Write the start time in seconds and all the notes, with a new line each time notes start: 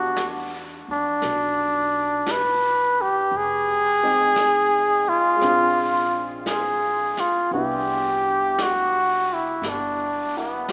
Already playing: E2 G3 B3 D4 F#4 F#5
0.16 brush sweep, snare, hi-hat pedal
0.88 F2 D4
1.22 B1, brush sweep, snare
2.27 brush sweep, snare, hi-hat pedal
2.31 B4
3.01 G4
3.31 F1, brush sweep
3.37 G#4
4.03 G#3 C4 D#4 G5
4.36 brush sweep, snare, hi-hat pedal
5.08 F4, muted upright bass stroke
5.37 G#3
5.41 A#1 C4 D4, brush sweep, snare
5.48 F4
6.46 G#4, brush sweep, snare, hi-hat pedal
7.17 F4, muted upright bass stroke, snare
7.51 C2 G3 B3 D4 G4, brush sweep
7.57 E4
8.59 F#4, brush sweep, snare, hi-hat pedal
9.33 E4
9.62 G1, brush sweep, snare
9.69 D4
10.37 B3 E4 F#5
10.69 brush sweep, snare, hi-hat pedal